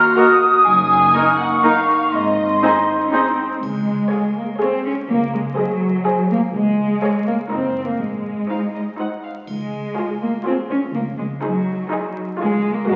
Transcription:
Already playing: french horn section A#3 F#4, celesta A#5, violin section A#5, flute section F6
0.16 viola section A#3 F#4, clarinet F#4, violin section A#4 D#5, oboe A#4, flute section D#6
0.64 double bass section F#1, cello section F#2, french horn section A#3 D#4, violin section G#5, celesta G#5
1.13 viola section A#3 D#4, clarinet D#4, violin section A#4 D#5, oboe A#4, flute section C#6
1.38 violin section F#5, celesta F#5
1.62 viola section A#3 D#4, clarinet D#4, oboe A#4, violin section A#4 D#5 F5, celesta F5
2.12 double bass section G#1, cello section G#2, french horn section C4, violin section D#5, celesta D#5, flute section C6
2.62 cello section A#3, viola section C4 D#4, clarinet D#4, violin section G#4 D#5, oboe C5
2.75 cello section C4
3.01 cello section C#4
3.12 viola section C4 D#4, clarinet D#4, violin section G#4 D#5, oboe C5
3.25 cello section C4
3.62 double bass section C#2, cello section G#3, triangle
4.11 viola section G#4, violin section C#5 F5
4.36 cello section A#3
4.59 cello section C4, viola section G#4, violin section C#5 F5
4.85 cello section C#4
5.09 double bass section C#2, cello section A#3
5.34 cello section G#3
5.57 cello section F#3, viola section G#4, violin section C5 D#5
6.05 viola section G#4, violin section C5 D#5
6.31 cello section A#3
6.54 double bass section C#2, cello section G#3
7.02 viola section G#4, violin section C#5 F5
7.26 cello section A#3
7.50 double bass section F#1, cello section C4, viola section D#4, violin section A#4 D#5
7.85 cello section A#3
8.01 double bass section G#1, cello section G#3
8.48 viola section D#4, violin section C5 F5
8.75 violin section D#5
8.98 viola section D#4, violin section C5 F#5
9.24 violin section F5
9.47 double bass section C#2, cello section G#3, triangle
9.96 viola section F4, violin section G#4 C#5
10.22 cello section A#3
10.44 cello section C4, viola section F4, violin section G#4 C#5
10.70 cello section C#4
10.93 double bass section C#2, cello section A#3
11.18 cello section G#3
11.42 cello section F#3, viola section D#4, violin section G#4 C5
11.90 viola section D#4, violin section G#4 C5
12.39 double bass section C#2, cello section G#3, viola section F4, violin section G#4 C#5
12.72 cello section A#3
12.87 double bass section F#1, cello section G#3, viola section F#4, violin section A#4 D#5

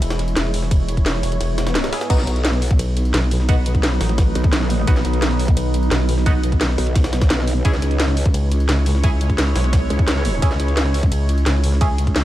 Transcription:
Already playing: ambient pad G#3 E4 C#5
0.02 wobble bass E1, closed hi-hat, ride
0.10 snare, closed hi-hat
0.19 snare, closed hi-hat, ride
0.28 closed hi-hat
0.36 wobble bass E1, snare, closed hi-hat, ride
0.45 snare
0.54 closed hi-hat, open hi-hat, ride
0.62 snare
0.71 kick, closed hi-hat, ride
0.89 closed hi-hat, ride
0.97 kick, closed hi-hat
1.06 snare, closed hi-hat, ride
1.15 snare
1.23 wobble bass E1, closed hi-hat, open hi-hat, ride
1.32 closed hi-hat
1.41 wobble bass E1, snare, closed hi-hat, ride, swell
1.58 snare, closed hi-hat, ride
1.67 snare, closed hi-hat
1.75 snare, closed hi-hat, ride
1.84 snare, closed hi-hat
1.93 synth stab B3 E4 G#4, snare, closed hi-hat, open hi-hat, ride
2.01 snare, closed hi-hat
2.10 wobble bass B1, ambient pad F#3 D#4 B4, synth stab B3 D#4 F#4, kick, closed hi-hat, crash, ride
2.19 snare, closed hi-hat
2.27 wobble bass B1, snare, closed hi-hat, ride
2.36 closed hi-hat
2.45 snare, closed hi-hat, ride
2.53 snare
2.62 open hi-hat, ride
2.71 kick, closed hi-hat
2.79 wobble bass B1, closed hi-hat, ride
2.97 closed hi-hat, ride
3.05 closed hi-hat
3.14 wobble bass B1, snare, closed hi-hat, ride
3.31 closed hi-hat, open hi-hat, ride
3.40 snare
3.49 synth stab B3 D#4 F#4, kick, closed hi-hat, ride
3.66 closed hi-hat, ride
3.75 kick, closed hi-hat
3.83 snare, closed hi-hat, ride
3.92 snare
4.01 wobble bass A1, snare, closed hi-hat, open hi-hat, ride
4.09 snare, closed hi-hat
4.18 kick, snare, closed hi-hat, ride
4.35 wobble bass B1, closed hi-hat, ride
4.44 kick
4.53 snare, closed hi-hat, ride
4.61 snare
4.70 closed hi-hat, open hi-hat, ride
4.87 wobble bass B1, synth stab B3 D#4 F#4, kick, closed hi-hat, ride
4.96 snare, closed hi-hat
5.05 wobble bass B1, snare, closed hi-hat, ride
5.13 closed hi-hat
5.22 snare, closed hi-hat, ride
5.31 snare
5.39 open hi-hat, ride
5.48 kick, closed hi-hat
5.57 wobble bass B1, closed hi-hat, ride
5.74 closed hi-hat, ride
5.83 closed hi-hat
5.91 wobble bass B1, snare, closed hi-hat, ride
6.09 closed hi-hat, open hi-hat, ride
6.18 snare
6.26 synth stab B3 D#4 F#4, kick, closed hi-hat, ride
6.43 closed hi-hat, ride
6.52 kick, closed hi-hat
6.61 snare, closed hi-hat, ride
6.69 snare
6.78 wobble bass B1, closed hi-hat, open hi-hat, ride
6.87 closed hi-hat
6.95 kick, snare, closed hi-hat, ride
7.04 snare, closed hi-hat
7.13 snare, closed hi-hat, ride
7.22 kick, snare, closed hi-hat
7.30 wobble bass B1, snare, closed hi-hat, ride
7.39 snare
7.48 closed hi-hat, open hi-hat, ride
7.65 wobble bass C#2, ambient pad G#3 E4 C#5, synth stab C#4 E4 G#4, kick, closed hi-hat, ride
7.74 snare, closed hi-hat
7.82 wobble bass C#2, snare, closed hi-hat, ride
7.91 closed hi-hat
8.00 snare, closed hi-hat, ride
8.08 snare
8.17 open hi-hat, ride
8.26 kick, closed hi-hat
8.34 wobble bass C#2, closed hi-hat, ride
8.52 closed hi-hat, ride
8.60 closed hi-hat
8.69 wobble bass C#2, snare, closed hi-hat, ride
8.86 closed hi-hat, open hi-hat, ride
8.95 snare
9.04 synth stab C#4 E4 G#4, kick, closed hi-hat, ride
9.21 closed hi-hat, ride
9.30 kick, closed hi-hat
9.38 snare, closed hi-hat, ride
9.47 snare
9.56 wobble bass B1, snare, closed hi-hat, open hi-hat, ride
9.64 snare, closed hi-hat
9.73 kick, snare, closed hi-hat, ride
9.90 wobble bass C#2, closed hi-hat, ride
9.99 kick
10.08 snare, closed hi-hat, ride
10.16 snare
10.25 closed hi-hat, open hi-hat, ride
10.42 wobble bass C#2, synth stab C#4 E4 G#4, kick, closed hi-hat, ride
10.51 snare, closed hi-hat
10.60 wobble bass C#2, snare, closed hi-hat, ride
10.68 closed hi-hat
10.77 snare, closed hi-hat, ride
10.86 snare
10.94 open hi-hat, ride
11.03 kick, closed hi-hat
11.12 wobble bass C#2, closed hi-hat, ride
11.29 closed hi-hat, ride
11.38 closed hi-hat
11.46 wobble bass C#2, snare, closed hi-hat, ride
11.64 closed hi-hat, open hi-hat, ride
11.72 snare
11.81 synth stab C#4 E4 G#4, kick, closed hi-hat, ride
11.98 closed hi-hat, ride
12.07 kick, closed hi-hat
12.16 snare, closed hi-hat, ride

